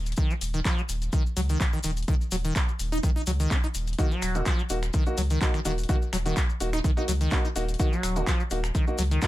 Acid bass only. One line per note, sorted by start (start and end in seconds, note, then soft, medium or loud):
0.18 0.32 D#3 medium
0.30 0.34 F#3 loud
0.54 0.60 D#3 medium
0.65 0.79 F3 medium
0.78 0.82 F#3 loud
1.13 1.23 D#3 medium
1.37 1.41 F#3 loud
1.49 1.58 D#3 medium
1.60 1.65 F3 medium
1.73 1.79 D#3 medium
1.84 1.91 D#3 medium
2.08 2.15 D#3 loud
2.32 2.36 F#3 loud
2.45 2.54 D#3 medium
2.92 2.98 D#4 loud
3.03 3.10 D#3 loud
3.16 3.22 D#4 medium
3.27 3.31 F#3 loud
3.40 3.52 D#3 medium
3.51 3.58 D#4 medium
3.64 3.67 D#4 medium
3.98 4.13 D#3 medium
4.11 4.37 F#3 loud
4.35 4.41 C#3 medium
4.46 4.60 F3 medium
4.59 4.63 F#3 loud
4.94 5.04 D#3 medium
5.18 5.22 F#3 loud
5.30 5.39 D#3 medium
5.41 5.46 F3 medium
5.54 5.60 D#3 medium
5.65 5.72 D#3 medium
5.89 5.96 D#3 loud
6.13 6.17 F#3 loud
6.26 6.35 D#3 medium
6.73 6.79 D#4 loud
6.84 6.91 D#3 loud
6.97 7.03 D#4 medium
7.08 7.12 F#3 loud
7.21 7.33 D#3 medium
7.32 7.39 D#4 medium
7.45 7.48 D#4 medium
7.80 7.94 D#3 medium
7.92 8.18 F#3 loud
8.16 8.22 C#3 medium
8.27 8.41 F3 medium
8.40 8.44 F#3 loud
8.75 8.85 D#3 medium
8.99 9.03 F#3 loud
9.11 9.20 D#3 medium
9.22 9.27 F3 medium